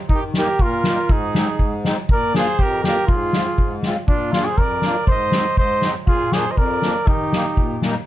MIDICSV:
0, 0, Header, 1, 5, 480
1, 0, Start_track
1, 0, Key_signature, -3, "major"
1, 0, Tempo, 497925
1, 107, Time_signature, 2, 2, 24, 8
1, 7774, End_track
2, 0, Start_track
2, 0, Title_t, "Trumpet"
2, 0, Program_c, 0, 56
2, 129, Note_on_c, 0, 67, 80
2, 233, Note_off_c, 0, 67, 0
2, 366, Note_on_c, 0, 70, 79
2, 601, Note_off_c, 0, 70, 0
2, 601, Note_on_c, 0, 70, 65
2, 1074, Note_on_c, 0, 68, 71
2, 1089, Note_off_c, 0, 70, 0
2, 1792, Note_off_c, 0, 68, 0
2, 2049, Note_on_c, 0, 74, 81
2, 2263, Note_off_c, 0, 74, 0
2, 2292, Note_on_c, 0, 72, 83
2, 2534, Note_on_c, 0, 70, 72
2, 2548, Note_off_c, 0, 72, 0
2, 2754, Note_off_c, 0, 70, 0
2, 2760, Note_on_c, 0, 70, 82
2, 2977, Note_off_c, 0, 70, 0
2, 3003, Note_on_c, 0, 68, 64
2, 3677, Note_off_c, 0, 68, 0
2, 3945, Note_on_c, 0, 65, 71
2, 4213, Note_on_c, 0, 68, 68
2, 4227, Note_off_c, 0, 65, 0
2, 4341, Note_on_c, 0, 72, 65
2, 4355, Note_off_c, 0, 68, 0
2, 4442, Note_on_c, 0, 74, 69
2, 4456, Note_off_c, 0, 72, 0
2, 4914, Note_off_c, 0, 74, 0
2, 4925, Note_on_c, 0, 75, 87
2, 5363, Note_off_c, 0, 75, 0
2, 5395, Note_on_c, 0, 75, 69
2, 5725, Note_off_c, 0, 75, 0
2, 5858, Note_on_c, 0, 68, 76
2, 6102, Note_on_c, 0, 72, 77
2, 6116, Note_off_c, 0, 68, 0
2, 6276, Note_on_c, 0, 75, 50
2, 6290, Note_off_c, 0, 72, 0
2, 6344, Note_on_c, 0, 74, 68
2, 6359, Note_off_c, 0, 75, 0
2, 6828, Note_on_c, 0, 67, 70
2, 6842, Note_off_c, 0, 74, 0
2, 7546, Note_off_c, 0, 67, 0
2, 7774, End_track
3, 0, Start_track
3, 0, Title_t, "Flugelhorn"
3, 0, Program_c, 1, 56
3, 88, Note_on_c, 1, 63, 85
3, 201, Note_off_c, 1, 63, 0
3, 360, Note_on_c, 1, 67, 88
3, 597, Note_on_c, 1, 65, 86
3, 611, Note_off_c, 1, 67, 0
3, 1073, Note_on_c, 1, 63, 92
3, 1087, Note_off_c, 1, 65, 0
3, 1791, Note_off_c, 1, 63, 0
3, 2044, Note_on_c, 1, 70, 98
3, 2260, Note_off_c, 1, 70, 0
3, 2269, Note_on_c, 1, 68, 102
3, 2500, Note_on_c, 1, 67, 97
3, 2515, Note_off_c, 1, 68, 0
3, 2727, Note_off_c, 1, 67, 0
3, 2733, Note_on_c, 1, 67, 93
3, 2956, Note_off_c, 1, 67, 0
3, 2962, Note_on_c, 1, 65, 95
3, 3656, Note_off_c, 1, 65, 0
3, 3933, Note_on_c, 1, 62, 83
3, 4167, Note_on_c, 1, 65, 85
3, 4181, Note_off_c, 1, 62, 0
3, 4290, Note_on_c, 1, 68, 80
3, 4305, Note_off_c, 1, 65, 0
3, 4409, Note_on_c, 1, 70, 88
3, 4423, Note_off_c, 1, 68, 0
3, 4888, Note_off_c, 1, 70, 0
3, 4894, Note_on_c, 1, 72, 89
3, 5346, Note_off_c, 1, 72, 0
3, 5379, Note_on_c, 1, 72, 98
3, 5717, Note_off_c, 1, 72, 0
3, 5854, Note_on_c, 1, 65, 95
3, 6104, Note_on_c, 1, 68, 83
3, 6119, Note_off_c, 1, 65, 0
3, 6281, Note_on_c, 1, 72, 69
3, 6295, Note_off_c, 1, 68, 0
3, 6340, Note_on_c, 1, 70, 96
3, 6355, Note_off_c, 1, 72, 0
3, 6819, Note_on_c, 1, 63, 92
3, 6834, Note_off_c, 1, 70, 0
3, 7542, Note_off_c, 1, 63, 0
3, 7774, End_track
4, 0, Start_track
4, 0, Title_t, "Accordion"
4, 0, Program_c, 2, 21
4, 107, Note_on_c, 2, 51, 60
4, 349, Note_on_c, 2, 55, 59
4, 355, Note_on_c, 2, 58, 51
4, 360, Note_on_c, 2, 63, 71
4, 457, Note_off_c, 2, 55, 0
4, 461, Note_off_c, 2, 58, 0
4, 463, Note_off_c, 2, 63, 0
4, 466, Note_off_c, 2, 51, 0
4, 596, Note_on_c, 2, 46, 66
4, 839, Note_on_c, 2, 55, 49
4, 844, Note_on_c, 2, 58, 51
4, 850, Note_on_c, 2, 63, 54
4, 944, Note_off_c, 2, 55, 0
4, 946, Note_off_c, 2, 58, 0
4, 949, Note_off_c, 2, 63, 0
4, 952, Note_off_c, 2, 46, 0
4, 1084, Note_on_c, 2, 44, 65
4, 1307, Note_on_c, 2, 56, 62
4, 1310, Note_on_c, 2, 60, 63
4, 1320, Note_on_c, 2, 63, 72
4, 1417, Note_off_c, 2, 56, 0
4, 1419, Note_off_c, 2, 60, 0
4, 1424, Note_off_c, 2, 63, 0
4, 1435, Note_off_c, 2, 44, 0
4, 1536, Note_on_c, 2, 44, 63
4, 1778, Note_on_c, 2, 56, 62
4, 1782, Note_on_c, 2, 60, 61
4, 1787, Note_on_c, 2, 63, 79
4, 1892, Note_off_c, 2, 56, 0
4, 1894, Note_off_c, 2, 60, 0
4, 1897, Note_off_c, 2, 63, 0
4, 1899, Note_off_c, 2, 44, 0
4, 2026, Note_on_c, 2, 46, 60
4, 2255, Note_on_c, 2, 58, 69
4, 2263, Note_on_c, 2, 62, 56
4, 2274, Note_on_c, 2, 65, 76
4, 2370, Note_off_c, 2, 58, 0
4, 2374, Note_off_c, 2, 62, 0
4, 2379, Note_off_c, 2, 65, 0
4, 2384, Note_off_c, 2, 46, 0
4, 2505, Note_on_c, 2, 41, 72
4, 2747, Note_on_c, 2, 58, 60
4, 2755, Note_on_c, 2, 62, 53
4, 2760, Note_on_c, 2, 65, 61
4, 2855, Note_off_c, 2, 58, 0
4, 2859, Note_off_c, 2, 62, 0
4, 2861, Note_off_c, 2, 65, 0
4, 2863, Note_off_c, 2, 41, 0
4, 2983, Note_on_c, 2, 44, 67
4, 3229, Note_on_c, 2, 56, 62
4, 3235, Note_on_c, 2, 60, 48
4, 3235, Note_on_c, 2, 65, 71
4, 3336, Note_off_c, 2, 56, 0
4, 3339, Note_off_c, 2, 60, 0
4, 3339, Note_off_c, 2, 65, 0
4, 3342, Note_off_c, 2, 44, 0
4, 3469, Note_on_c, 2, 44, 69
4, 3711, Note_on_c, 2, 56, 63
4, 3716, Note_on_c, 2, 60, 64
4, 3722, Note_on_c, 2, 65, 70
4, 3818, Note_off_c, 2, 56, 0
4, 3820, Note_off_c, 2, 60, 0
4, 3823, Note_off_c, 2, 65, 0
4, 3826, Note_off_c, 2, 44, 0
4, 3955, Note_on_c, 2, 46, 58
4, 4176, Note_on_c, 2, 58, 64
4, 4185, Note_on_c, 2, 62, 52
4, 4191, Note_on_c, 2, 65, 70
4, 4290, Note_off_c, 2, 58, 0
4, 4295, Note_off_c, 2, 62, 0
4, 4298, Note_off_c, 2, 65, 0
4, 4310, Note_off_c, 2, 46, 0
4, 4416, Note_on_c, 2, 41, 62
4, 4660, Note_on_c, 2, 58, 61
4, 4664, Note_on_c, 2, 62, 55
4, 4669, Note_on_c, 2, 65, 60
4, 4772, Note_off_c, 2, 58, 0
4, 4774, Note_off_c, 2, 62, 0
4, 4776, Note_off_c, 2, 65, 0
4, 4778, Note_off_c, 2, 41, 0
4, 4909, Note_on_c, 2, 44, 66
4, 5131, Note_on_c, 2, 56, 62
4, 5133, Note_on_c, 2, 60, 56
4, 5139, Note_on_c, 2, 63, 65
4, 5247, Note_off_c, 2, 56, 0
4, 5248, Note_off_c, 2, 60, 0
4, 5251, Note_off_c, 2, 63, 0
4, 5265, Note_off_c, 2, 44, 0
4, 5383, Note_on_c, 2, 44, 64
4, 5613, Note_on_c, 2, 56, 52
4, 5617, Note_on_c, 2, 60, 52
4, 5623, Note_on_c, 2, 63, 67
4, 5728, Note_off_c, 2, 56, 0
4, 5730, Note_off_c, 2, 60, 0
4, 5733, Note_off_c, 2, 63, 0
4, 5741, Note_off_c, 2, 44, 0
4, 5872, Note_on_c, 2, 46, 69
4, 6103, Note_on_c, 2, 53, 60
4, 6105, Note_on_c, 2, 58, 64
4, 6114, Note_on_c, 2, 62, 70
4, 6211, Note_off_c, 2, 53, 0
4, 6212, Note_off_c, 2, 58, 0
4, 6217, Note_off_c, 2, 62, 0
4, 6225, Note_off_c, 2, 46, 0
4, 6337, Note_on_c, 2, 41, 74
4, 6579, Note_on_c, 2, 53, 57
4, 6588, Note_on_c, 2, 62, 65
4, 6589, Note_on_c, 2, 58, 49
4, 6688, Note_off_c, 2, 53, 0
4, 6693, Note_off_c, 2, 58, 0
4, 6693, Note_off_c, 2, 62, 0
4, 6696, Note_off_c, 2, 41, 0
4, 6825, Note_on_c, 2, 51, 64
4, 7071, Note_on_c, 2, 55, 62
4, 7077, Note_on_c, 2, 58, 54
4, 7082, Note_on_c, 2, 63, 76
4, 7175, Note_off_c, 2, 55, 0
4, 7178, Note_off_c, 2, 58, 0
4, 7180, Note_off_c, 2, 63, 0
4, 7181, Note_off_c, 2, 51, 0
4, 7308, Note_on_c, 2, 46, 58
4, 7559, Note_on_c, 2, 55, 60
4, 7565, Note_on_c, 2, 58, 60
4, 7568, Note_on_c, 2, 63, 80
4, 7660, Note_off_c, 2, 55, 0
4, 7663, Note_off_c, 2, 58, 0
4, 7664, Note_off_c, 2, 46, 0
4, 7664, Note_off_c, 2, 63, 0
4, 7774, End_track
5, 0, Start_track
5, 0, Title_t, "Drums"
5, 90, Note_on_c, 9, 36, 69
5, 186, Note_off_c, 9, 36, 0
5, 325, Note_on_c, 9, 38, 82
5, 421, Note_off_c, 9, 38, 0
5, 571, Note_on_c, 9, 36, 63
5, 668, Note_off_c, 9, 36, 0
5, 806, Note_on_c, 9, 38, 81
5, 902, Note_off_c, 9, 38, 0
5, 1054, Note_on_c, 9, 36, 80
5, 1151, Note_off_c, 9, 36, 0
5, 1297, Note_on_c, 9, 38, 89
5, 1394, Note_off_c, 9, 38, 0
5, 1536, Note_on_c, 9, 36, 61
5, 1632, Note_off_c, 9, 36, 0
5, 1779, Note_on_c, 9, 38, 73
5, 1875, Note_off_c, 9, 38, 0
5, 2016, Note_on_c, 9, 36, 83
5, 2112, Note_off_c, 9, 36, 0
5, 2260, Note_on_c, 9, 38, 88
5, 2356, Note_off_c, 9, 38, 0
5, 2496, Note_on_c, 9, 36, 66
5, 2592, Note_off_c, 9, 36, 0
5, 2736, Note_on_c, 9, 38, 71
5, 2833, Note_off_c, 9, 38, 0
5, 2973, Note_on_c, 9, 36, 79
5, 3070, Note_off_c, 9, 36, 0
5, 3209, Note_on_c, 9, 38, 84
5, 3306, Note_off_c, 9, 38, 0
5, 3453, Note_on_c, 9, 36, 68
5, 3549, Note_off_c, 9, 36, 0
5, 3686, Note_on_c, 9, 38, 63
5, 3783, Note_off_c, 9, 38, 0
5, 3933, Note_on_c, 9, 36, 70
5, 4029, Note_off_c, 9, 36, 0
5, 4171, Note_on_c, 9, 38, 78
5, 4267, Note_off_c, 9, 38, 0
5, 4413, Note_on_c, 9, 36, 68
5, 4509, Note_off_c, 9, 36, 0
5, 4643, Note_on_c, 9, 38, 67
5, 4740, Note_off_c, 9, 38, 0
5, 4890, Note_on_c, 9, 36, 74
5, 4986, Note_off_c, 9, 36, 0
5, 5125, Note_on_c, 9, 38, 85
5, 5221, Note_off_c, 9, 38, 0
5, 5372, Note_on_c, 9, 36, 66
5, 5469, Note_off_c, 9, 36, 0
5, 5607, Note_on_c, 9, 38, 66
5, 5703, Note_off_c, 9, 38, 0
5, 5854, Note_on_c, 9, 36, 81
5, 5950, Note_off_c, 9, 36, 0
5, 6092, Note_on_c, 9, 38, 77
5, 6188, Note_off_c, 9, 38, 0
5, 6337, Note_on_c, 9, 36, 60
5, 6433, Note_off_c, 9, 36, 0
5, 6573, Note_on_c, 9, 38, 60
5, 6670, Note_off_c, 9, 38, 0
5, 6817, Note_on_c, 9, 36, 89
5, 6914, Note_off_c, 9, 36, 0
5, 7061, Note_on_c, 9, 38, 84
5, 7157, Note_off_c, 9, 38, 0
5, 7299, Note_on_c, 9, 36, 65
5, 7396, Note_off_c, 9, 36, 0
5, 7538, Note_on_c, 9, 38, 72
5, 7634, Note_off_c, 9, 38, 0
5, 7774, End_track
0, 0, End_of_file